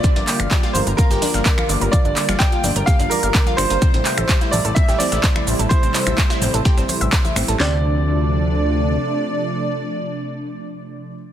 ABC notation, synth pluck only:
X:1
M:4/4
L:1/16
Q:1/4=127
K:Dm
V:1 name="Synth pluck"
D D g f G F B B F G D f d F d B | F D d f d F D B G D d f d F D B | C C g e G E A A E G C e c E c A | E C c e c E C A G C c e c E C A |
C2 z12 z2 | z16 |]